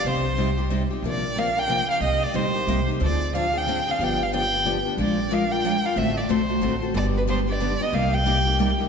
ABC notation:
X:1
M:3/4
L:1/8
Q:"Swing" 1/4=182
K:Cm
V:1 name="Violin"
c4 z2 | d2 f g2 f | e d c3 z | d2 f g2 f |
g f g3 z | d2 f g2 f | =e d c3 z | d =B c d2 e |
f g4 z |]
V:2 name="Steel-string acoustic guitar"
[C,G,CEG] z [C,G,CEG] [CEG] [C,G,CEG] [CEG] | [C,F,B,DB] z [C,F,B,DB] [B,DB] [C,F,B,DB] [B,DB] | [C,G,B,EG] z [C,G,B,EG] [B,EG] [C,G,B,EG] [B,EG] | [D,F,CDA] z [D,F,CDA] [CDA] [D,F,CDA] [CDA] |
[D,F,=B,DG] z [D,F,B,DG] [B,DG] [D,F,B,DG] [B,DG] | [F,A,DFB] z [F,A,DFB] [DFB] [F,A,DFB] [DFB] | [D,=A,C^F=A] z [D,A,CFA] [CFA] [D,A,CFA] [CFA] | [D,G,=B,DG] z [D,G,B,DG] [B,DG] [D,G,B,DG] [B,DG] |
[C,G,B,EG] z [C,G,B,EG] [B,EG] [C,G,B,EG] [B,EG] |]
V:3 name="Steel-string acoustic guitar"
[C,G,CEG] z [C,G,CEG] z [C,G,CEG] z | [C,F,B,DB] z [C,F,B,DB] z [C,F,B,DB] z | [C,G,B,EG] z [C,G,B,EG] z [C,G,B,EG] z | [D,F,CDA] z [D,F,CDA] z [D,F,CDA] z |
[D,F,=B,DG] z [D,F,B,DG] z [D,F,B,DG] z | [F,A,DFB] z [F,A,DFB] z [F,A,DFB] z | [D,=A,C^F=A] z [D,A,CFA] z [D,A,CFA] z | [D,G,=B,DG] z [D,G,B,DG] z [D,G,B,DG] z |
[C,G,B,EG] z [C,G,B,EG] z [C,G,B,EG] z |]
V:4 name="Upright bass" clef=bass
C,,6 | B,,,6 | C,,2 B,,,2 C,,2 | D,,6 |
G,,,6 | B,,,6 | =A,,,2 =B,,,2 A,,,2 | G,,,6 |
C,,6 |]